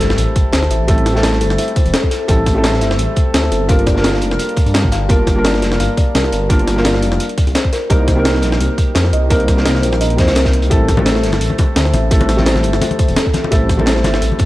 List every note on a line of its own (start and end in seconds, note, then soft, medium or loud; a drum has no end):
0.00 0.17 G1 medium
0.00 0.88 G3 medium
0.00 0.88 A3 medium
0.00 0.89 C4 medium
0.00 0.89 E4 medium
0.00 0.90 A4 loud
0.00 snare soft
0.00 closed hi-hat medium
0.00 sub drop medium
0.10 snare soft
0.10 snare medium
0.18 0.27 A1 loud
0.18 closed hi-hat medium
0.36 kick loud
0.36 closed hi-hat medium
0.53 0.69 D2 medium
0.53 0.69 C5 medium
0.53 snare loud
0.53 closed hi-hat medium
0.63 snare soft
0.71 1.43 A1 loud
0.71 0.88 E5 medium
0.71 closed hi-hat medium
0.88 1.12 G3 loud
0.88 1.13 A3 medium
0.88 1.13 C4 medium
0.88 1.13 E4 medium
0.88 1.14 A4 loud
0.88 kick loud
0.88 closed hi-hat medium
0.98 closed hi-hat soft
1.06 snare medium
1.06 closed hi-hat medium
1.13 2.26 G3 medium
1.13 2.26 A3 medium
1.13 2.27 C4 medium
1.13 2.27 E4 medium
1.13 2.28 A4 medium
1.13 snare soft
1.23 1.34 C5 medium
1.23 snare loud
1.23 closed hi-hat loud
1.33 snare soft
1.41 1.57 G1 medium
1.41 1.51 A4 medium
1.41 closed hi-hat medium
1.50 snare medium
1.58 1.75 E5 medium
1.58 closed hi-hat medium
1.68 closed hi-hat soft
1.76 1.92 C5 medium
1.76 kick loud
1.76 closed hi-hat medium
1.86 1.93 E1 medium
1.86 closed hi-hat soft
1.94 2.04 A4 loud
1.94 snare loud
1.94 closed hi-hat medium
2.03 kick medium
2.11 snare soft
2.11 closed hi-hat medium
2.28 2.83 A1 loud
2.28 2.52 G3 medium
2.28 2.53 A3 medium
2.28 2.54 C4 medium
2.28 2.54 E4 medium
2.28 2.54 A4 loud
2.28 kick loud
2.28 closed hi-hat loud
2.28 closed hi-hat medium
2.46 kick medium
2.46 snare medium
2.46 closed hi-hat medium
2.54 3.66 G3 medium
2.54 3.67 A3 medium
2.54 3.67 C4 medium
2.54 3.68 E4 medium
2.54 3.68 A4 loud
2.64 2.80 C5 medium
2.64 snare loud
2.64 closed hi-hat medium
2.73 snare soft
2.81 2.97 G1 medium
2.81 2.98 E5 medium
2.81 snare soft
2.81 closed hi-hat medium
2.91 snare soft
2.91 snare medium
2.99 3.07 A1 loud
2.99 closed hi-hat medium
3.16 kick loud
3.16 closed hi-hat medium
3.34 3.50 D2 medium
3.34 3.44 C5 medium
3.34 snare loud
3.34 closed hi-hat medium
3.44 snare soft
3.51 4.23 G1 medium
3.51 3.62 A4 medium
3.51 closed hi-hat medium
3.68 3.93 G3 loud
3.68 3.94 A#3 medium
3.68 3.94 D4 medium
3.68 3.94 F4 medium
3.68 3.94 A#4 loud
3.68 3.86 F5 medium
3.68 kick loud
3.68 closed hi-hat medium
3.79 closed hi-hat soft
3.87 4.03 D5 medium
3.87 kick medium
3.87 snare medium
3.87 closed hi-hat medium
3.94 5.07 G3 medium
3.94 5.07 A#3 medium
3.94 5.08 D4 medium
3.94 5.08 F4 medium
3.94 5.09 A#4 medium
3.94 snare soft
4.04 4.14 A#4 loud
4.04 snare loud
4.04 closed hi-hat medium
4.14 snare medium
4.14 snare soft
4.22 4.38 F1 medium
4.22 closed hi-hat medium
4.31 snare medium
4.39 closed hi-hat medium
4.49 closed hi-hat soft
4.57 kick loud
4.57 closed hi-hat medium
4.66 4.85 G2 medium
4.66 closed hi-hat soft
4.74 4.91 G5 medium
4.74 snare loud
4.74 closed hi-hat medium
4.84 5.08 G1 medium
4.84 kick medium
4.92 5.08 F5 loud
4.92 snare soft
4.92 closed hi-hat medium
5.09 5.64 G1 medium
5.09 5.33 G3 loud
5.09 5.34 A#3 medium
5.09 5.34 D4 medium
5.09 5.35 F4 medium
5.09 5.35 A#4 loud
5.09 kick loud
5.09 closed hi-hat medium
5.27 kick medium
5.27 snare medium
5.27 closed hi-hat medium
5.35 6.47 G3 medium
5.35 6.48 A#3 medium
5.35 6.48 D4 medium
5.35 6.48 F4 medium
5.35 6.49 A#4 loud
5.45 5.55 D5 medium
5.45 snare loud
5.45 closed hi-hat medium
5.54 snare soft
5.62 5.78 F1 medium
5.62 5.72 A#4 medium
5.62 snare medium
5.62 closed hi-hat medium
5.72 snare soft
5.72 snare medium
5.80 5.88 G1 loud
5.80 5.97 F5 medium
5.80 closed hi-hat medium
5.97 6.13 D5 medium
5.97 kick loud
5.97 closed hi-hat medium
6.15 6.31 C2 medium
6.15 6.25 A#4 loud
6.15 snare loud
6.15 closed hi-hat medium
6.24 snare soft
6.32 7.04 G1 medium
6.32 closed hi-hat medium
6.49 6.74 G3 loud
6.49 6.75 A#3 medium
6.49 6.75 D4 medium
6.49 6.75 F4 medium
6.49 6.75 A#4 loud
6.49 kick loud
6.49 closed hi-hat medium
6.59 closed hi-hat soft
6.67 snare medium
6.67 closed hi-hat medium
6.75 7.18 G3 medium
6.75 7.19 A#3 medium
6.75 7.19 D4 medium
6.75 7.20 F4 medium
6.75 7.20 A#4 medium
6.75 snare soft
6.85 7.01 D5 medium
6.85 snare loud
6.85 closed hi-hat medium
6.85 closed hi-hat loud
6.94 snare soft
7.03 7.19 F1 medium
7.03 7.19 F5 medium
7.03 closed hi-hat medium
7.12 snare medium
7.20 closed hi-hat medium
7.29 closed hi-hat soft
7.38 kick medium
7.38 closed hi-hat medium
7.47 7.54 C2 medium
7.47 closed hi-hat soft
7.55 7.65 C5 medium
7.55 snare loud
7.55 closed hi-hat medium
7.65 kick medium
7.72 7.83 A#4 medium
7.72 snare soft
7.72 closed hi-hat medium
7.89 8.44 C2 loud
7.89 8.14 G3 loud
7.89 8.15 A#3 medium
7.89 8.15 C4 medium
7.89 8.15 D#4 medium
7.89 8.16 A#4 loud
7.89 8.07 D#5 medium
7.89 kick loud
7.89 closed hi-hat medium
8.08 8.24 C5 medium
8.08 kick medium
8.08 snare medium
8.08 closed hi-hat medium
8.15 9.28 G3 medium
8.15 9.28 A#3 medium
8.15 9.29 C4 medium
8.15 9.29 D#4 medium
8.15 9.30 A#4 loud
8.25 8.35 A#4 medium
8.25 snare loud
8.25 closed hi-hat medium
8.25 closed hi-hat loud
8.35 snare soft
8.42 8.59 A#1 medium
8.42 snare soft
8.42 closed hi-hat medium
8.52 snare soft
8.52 snare medium
8.60 8.69 C2 loud
8.60 closed hi-hat medium
8.78 kick medium
8.78 closed hi-hat medium
8.95 9.11 F2 medium
8.95 9.12 C5 medium
8.95 snare loud
8.95 closed hi-hat medium
8.95 closed hi-hat loud
9.05 snare soft
9.13 9.85 C2 loud
9.13 9.30 D#5 medium
9.13 closed hi-hat medium
9.30 9.54 G3 medium
9.30 9.55 A#3 medium
9.30 9.55 C4 medium
9.30 9.56 D#4 medium
9.30 9.56 A#4 loud
9.30 kick loud
9.30 closed hi-hat loud
9.40 closed hi-hat soft
9.48 kick medium
9.48 snare medium
9.48 closed hi-hat medium
9.56 10.15 G3 medium
9.56 10.16 A#3 medium
9.56 10.17 C4 medium
9.56 10.17 D#4 medium
9.56 10.18 A#4 medium
9.56 snare soft
9.66 9.76 C5 medium
9.66 snare loud
9.66 closed hi-hat loud
9.66 closed hi-hat medium
9.75 snare medium
9.75 snare soft
9.83 10.20 A#1 medium
9.83 9.93 A#4 medium
9.83 closed hi-hat medium
9.93 snare medium
10.01 10.18 D#5 medium
10.01 closed hi-hat medium
10.10 closed hi-hat soft
10.17 10.29 F2 loud
10.17 10.68 G3 medium
10.17 10.69 A#3 medium
10.17 10.69 C4 medium
10.17 10.70 D#4 medium
10.17 10.34 C5 medium
10.17 10.70 C5 medium
10.17 kick loud
10.17 snare loud
10.17 closed hi-hat medium
10.28 10.70 C2 medium
10.28 snare loud
10.28 closed hi-hat medium
10.28 closed hi-hat soft
10.35 10.46 A#4 loud
10.35 snare loud
10.35 closed hi-hat medium
10.45 kick medium
10.45 snare medium
10.45 closed hi-hat medium
10.53 closed hi-hat medium
10.62 closed hi-hat medium
10.70 11.25 A1 loud
10.70 10.95 G3 loud
10.70 10.95 A3 medium
10.70 10.96 C4 medium
10.70 10.96 E4 medium
10.70 10.96 A4 loud
10.70 10.88 E5 medium
10.70 kick loud
10.70 closed hi-hat medium
10.70 closed hi-hat loud
10.70 muted conga soft
10.89 11.04 C5 medium
10.89 kick medium
10.89 snare medium
10.89 closed hi-hat medium
10.96 12.09 G3 medium
10.96 12.09 A3 medium
10.96 12.10 C4 medium
10.96 12.10 E4 medium
10.96 12.11 A4 loud
10.96 muted conga medium
10.96 high conga loud
11.06 11.16 A4 loud
11.06 snare loud
11.06 closed hi-hat loud
11.15 snare soft
11.23 11.40 G1 medium
11.23 snare soft
11.23 closed hi-hat medium
11.32 snare soft
11.32 snare medium
11.32 muted conga soft
11.41 11.50 A1 loud
11.41 closed hi-hat loud
11.41 closed hi-hat medium
11.50 high conga medium
11.58 kick loud
11.58 closed hi-hat medium
11.58 muted conga medium
11.76 11.92 D2 medium
11.76 11.92 C5 medium
11.76 snare loud
11.76 closed hi-hat medium
11.76 closed hi-hat loud
11.85 snare soft
11.94 12.65 A1 loud
11.94 12.11 E5 medium
11.94 closed hi-hat medium
11.94 muted conga soft
11.94 high conga medium
12.11 12.35 G3 loud
12.11 12.36 A3 medium
12.11 12.36 C4 medium
12.11 12.36 E4 medium
12.11 12.37 A4 loud
12.11 kick loud
12.11 closed hi-hat loud
12.21 closed hi-hat soft
12.21 muted conga medium
12.29 snare medium
12.29 closed hi-hat medium
12.37 13.49 G3 medium
12.37 13.49 A3 medium
12.37 13.50 C4 medium
12.37 13.50 E4 medium
12.37 13.51 A4 medium
12.37 snare soft
12.37 high conga loud
12.46 12.57 C5 medium
12.46 snare loud
12.46 closed hi-hat medium
12.46 closed hi-hat loud
12.56 snare medium
12.56 snare soft
12.56 muted conga medium
12.63 12.80 G1 medium
12.63 12.74 A4 medium
12.63 closed hi-hat medium
12.73 snare medium
12.81 12.98 E5 medium
12.81 closed hi-hat medium
12.81 muted conga medium
12.91 closed hi-hat soft
12.91 high conga medium
12.99 13.15 C5 medium
12.99 kick loud
12.99 closed hi-hat medium
13.08 13.16 E1 medium
13.08 closed hi-hat soft
13.16 13.27 A4 loud
13.16 snare loud
13.16 closed hi-hat medium
13.16 closed hi-hat loud
13.16 muted conga medium
13.26 kick medium
13.34 snare soft
13.34 closed hi-hat medium
13.34 high conga medium
13.44 muted conga medium
13.51 14.06 A1 loud
13.51 13.75 G3 loud
13.51 13.76 A3 medium
13.51 13.76 C4 medium
13.51 13.77 E4 medium
13.51 13.77 A4 loud
13.51 kick loud
13.51 closed hi-hat medium
13.51 closed hi-hat loud
13.69 kick medium
13.69 snare medium
13.69 closed hi-hat medium
13.77 14.45 G3 medium
13.77 14.45 A3 medium
13.77 14.45 C4 medium
13.77 14.45 E4 medium
13.77 14.45 A4 loud
13.77 muted conga medium
13.77 high conga medium
13.86 14.03 C5 medium
13.86 snare loud
13.86 closed hi-hat medium
13.96 snare soft
14.04 14.20 G1 medium
14.04 14.21 E5 medium
14.04 snare soft
14.04 closed hi-hat medium
14.04 muted conga medium
14.14 snare soft
14.14 snare medium
14.22 14.30 A1 loud
14.22 closed hi-hat medium
14.32 high conga medium
14.39 kick loud
14.39 closed hi-hat medium
14.39 muted conga medium